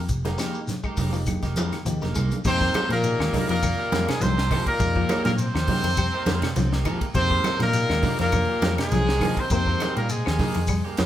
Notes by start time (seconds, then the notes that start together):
Already playing: D#3
0.09 F1, kick, closed hi-hat, shekere
0.25 D#3 A#3 D#4 G4, snare, closed hi-hat, high conga, shekere
0.38 F3 G#3 A#3 D#4 G4, snare, closed hi-hat, claves, shekere
0.54 shekere
0.67 snare, closed hi-hat, high conga, shekere
0.83 G#3 A#3 D#4 G4, kick, claves, shekere
0.97 F1 G#3 A#3 D#4 G4, kick, open hi-hat, high conga, low conga, shekere
1.13 F3 G#3 A#3 D#4 G4, shekere
1.26 kick, closed hi-hat, high conga, low conga, claves, shekere
1.42 F1 D#3 A#3 D#4 G4, kick, snare, closed hi-hat, shekere
1.56 F2 F3 G#3 A#3 D#4 G4, closed hi-hat, high conga, shekere
1.72 D#3, snare, closed hi-hat, claves, shekere
1.85 D#2 F3 G#3 A#3 D#4 G4, closed hi-hat, shekere
2.01 F1 D#3 A#3 D#4 G4, snare, high conga, shekere
2.15 C2 G#3 A#3 D#4, kick, closed hi-hat, low conga, claves, shekere
2.31 closed hi-hat, high conga, shekere
2.44 F2 C3 G#3 A#3 C4 D#4 G4 C5, kick, crash, shekere
2.61 D#3 A#3 D#4 G4, kick, snare
2.74 G#3 A#3 D#4 G4, muted fingered electric bass stroke, snare, ride bell, high conga, claves, shekere
2.89 A#2 F3 A#3 A#4, snare, ride bell
3.04 G#3 A#3 D#4 G4, ride bell, shekere
3.19 D#2 G#3 A#3 D#4 G4, snare, claves
3.33 G#3 A#3 D#4 G4, kick, snare, open hi-hat, high conga, low conga, shekere
3.49 F2 A#2 F3 A#3 A#4, ride bell
3.63 D#3, kick, ride bell, claves, shekere
3.78 A#3 D#4 G4
3.92 F2 G3 G#3 A#3 D#4 G4, snare, ride bell, high conga, shekere
4.08 G#2 G#3 A#3 D#4 G#4 A#4, snare, ride bell, low conga, claves
4.21 C2 C3 F3 C4 C5, snare, ride bell, high conga, shekere
4.37 D#4 G4, snare
4.50 D#3 F3 G#3 A#3 D#4 G4, kick, open hi-hat, low conga, claves, shekere
4.66 A#2 A#3 A#4, muted fingered electric bass stroke, kick, ride bell
4.79 F2 G#3 A#3 D#4 G4, kick, ride bell, shekere
4.96 F3 A#3 D#4 G4, kick
5.09 G#3 A#3 D#4 G4, snare, ride bell, high conga, claves, shekere
5.25 A#2 G3 A#3 A#4, snare, ride bell, high conga
5.38 C3 C4 C5, ride bell, shekere
5.54 D#2 F3 A#3 D#4 G4, snare, claves
5.67 G#3 A#3 D#4 G4, muted fingered electric bass stroke, kick, open hi-hat, high conga, low conga, shekere
5.83 F2 D#3, ride bell
5.97 G3, kick, ride bell, claves, shekere
6.13 A#3 D#4 G4
6.26 F2 D#3 G#3 A#3 D#4 G4, snare, ride bell, high conga, shekere
6.42 snare, ride bell, low conga, claves
6.56 C2 F3, snare, ride bell, high conga, shekere
6.72 A#3 D#4 G4, snare
6.85 D#3 F3 G#3 A#3 D#4 G4, kick, ride bell, low conga, claves, shekere
7.01 muted fingered electric bass stroke, kick, ride bell
7.14 F2 C3 G#3 A#3 C4 D#4 G4 C5, kick, ride bell, shekere
7.31 D#3 A#3 D#4 G4, kick
7.44 G#3 A#3 D#4, muted fingered electric bass stroke, muted clean electric guitar stroke, snare, ride bell, high conga, claves, shekere
7.60 A#2 F3 A#3 A#4, snare, ride bell, high conga
7.73 G#3 A#3 D#4 G4, ride bell, shekere
7.89 D#2 G#3 A#3 D#4 G4, snare, claves
8.02 G#3 A#3 D#4 G4, muted fingered electric bass stroke, kick, snare, open hi-hat, high conga, low conga, shekere
8.19 F2 A#2 F3 A#3 A#4, snare, ride bell
8.32 D#3, kick, ride bell, high conga, claves, shekere
8.48 A#3 G4, muted clean electric guitar stroke
8.61 F2 G3 G#3 A#3 D#4 G4, snare, ride bell, high conga, shekere
8.78 G#2 G#3 A#3 D#4 G#4 A#4, snare, ride bell, low conga, claves
8.83 G#3
8.91 C2 F3, snare, ride bell, high conga, shekere
9.07 A#3 D#4 G4, snare
9.21 D#3 F3 G#3 A#3 D#4 G4, kick, open hi-hat, high conga, low conga, claves, shekere
9.37 C3 C4 C5, muted fingered electric bass stroke, kick, ride bell
9.50 F2 C3 G#3 A#3 C4 D#4 G4 C5, kick, ride bell, shekere
9.66 F3 A#3 D#4 G4, kick
9.80 G#3 A#3 D#4 G4, snare, ride bell, high conga, claves, shekere
9.97 A#2 G3 A#3 A#4, ride bell
10.09 G#2 G#3 G#4, ride bell, shekere
10.26 D#2 F3 A#3 D#4 G4, snare, claves
10.39 G#3 A#3 D#4 G4, muted fingered electric bass stroke, kick, snare, open hi-hat, high conga, low conga, shekere
10.54 F2 D#3, ride bell
10.67 G3, kick, ride bell, claves, shekere
10.84 A#3 G4, muted clean electric guitar stroke
10.97 F2 G#3 A#3 D#4 G4, snare, ride bell, high conga, shekere